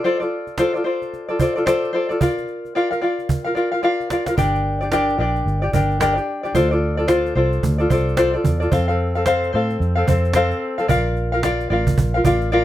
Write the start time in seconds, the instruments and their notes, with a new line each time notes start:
0.04 ukulele F4 A4 C5 D5, cajon slap
0.20 ukulele F4 A4 D5, cajon slap
0.47 cajon slap
0.58 ukulele F4 A4 C5 D5, cajon slap
0.74 ukulele F4 A4 D5, cajon slap
0.84 ukulele F4 A4 C5 D5
1.02 cajon slap
1.14 cajon slap
1.29 ukulele F4 A4 D5, cajon slap
1.39 ukulele F4 A4 C5 D5, cajon bass
1.56 ukulele F4 A4 D5, cajon slap
1.66 ukulele F4 A4 C5 D5, cajon slap
1.84 cajon slap
1.93 ukulele F4 A4 C5 D5
2.09 ukulele F4 A4 D5, cajon slap
2.20 ukulele F4 A#4 D5 F5, cajon bass
2.38 cajon slap
2.47 cajon slap
2.65 cajon slap
2.75 ukulele F4 A#4 D5 F5, cajon slap
2.91 ukulele F4 A#4 F5, cajon slap
3.01 ukulele F4 A#4 D5 F5, cajon slap
3.19 cajon slap
3.29 cajon bass
3.44 ukulele F4 A#4 F5, cajon slap
3.55 ukulele F4 A#4 D5 F5, cajon slap
3.72 ukulele F4 A#4 F5, cajon slap
3.83 ukulele F4 A#4 D5 F5, cajon slap
4.00 cajon slap
4.10 ukulele F4 A#4 D5 F5, cajon slap
4.26 ukulele F4 A#4 F5, cajon slap
4.37 fingered electric bass G1, ukulele D4 G4 A#4 D5, cajon bass
4.55 cajon slap
4.81 ukulele D4 G4 D5, cajon slap
4.92 ukulele D4 G4 A#4 D5, cajon slap
5.09 cajon slap
5.18 fingered electric bass A#1, ukulele D4 G4 A#4 D5
5.36 cajon slap
5.46 fingered electric bass G1, cajon slap
5.62 ukulele D4 G4 D5, cajon slap
5.73 fingered electric bass G1, ukulele D4 G4 A#4 D5, cajon bass
5.91 cajon slap
6.00 ukulele D4 G4 A#4 D5, cajon slap
6.16 ukulele D4 G4 D5, cajon slap
6.43 ukulele D4 G4 D5, cajon slap
6.54 fingered electric bass D2, ukulele F4 A4 C5 D5, cajon bass
6.71 ukulele F4 A4 D5, cajon slap
6.97 ukulele F4 A4 D5, cajon slap
7.08 ukulele F4 A4 C5 D5, cajon slap
7.26 cajon slap
7.35 fingered electric bass C2, ukulele F4 A4 C5 D5
7.53 cajon slap
7.63 fingered electric bass D2, cajon bass
7.78 ukulele F4 A4 D5
7.90 fingered electric bass C2, ukulele F4 A4 C5 D5, cajon bass
8.08 cajon slap
8.17 ukulele F4 A4 C5 D5, cajon slap
8.33 ukulele F4 A4 D5, cajon slap
8.44 fingered electric bass E2, cajon bass
8.60 ukulele F4 A4 D5, cajon slap
8.71 fingered electric bass F2, ukulele C4 A4 C5 F5, cajon bass
8.88 ukulele C4 A4 F5, cajon slap
9.15 ukulele C4 A4 F5, cajon slap
9.26 ukulele C4 A4 C5 F5, cajon slap
9.43 cajon slap
9.53 fingered electric bass A2, ukulele C4 A4 C5 F5
9.70 cajon slap
9.80 fingered electric bass F2, cajon slap
9.95 ukulele C4 A4 F5, cajon slap
10.07 fingered electric bass F2, ukulele C4 A4 C5 F5, cajon bass
10.24 cajon slap
10.33 ukulele C4 A4 C5 F5, cajon slap
10.51 cajon slap
10.78 ukulele C4 A4 F5, cajon slap
10.88 fingered electric bass A#1, ukulele F4 A#4 D5 F5, cajon bass
11.16 cajon slap
11.32 ukulele F4 A#4 F5, cajon slap
11.43 ukulele F4 A#4 D5 F5, cajon slap
11.60 cajon slap
11.70 fingered electric bass A1, ukulele F4 A#4 D5 F5, cajon slap
11.87 cajon bass
11.98 fingered electric bass A#1, cajon bass
12.14 ukulele F4 A#4 F5, cajon slap
12.24 fingered electric bass A1, ukulele F4 A#4 D5 F5, cajon bass
12.41 cajon slap
12.52 ukulele F4 A#4 D5 F5, cajon slap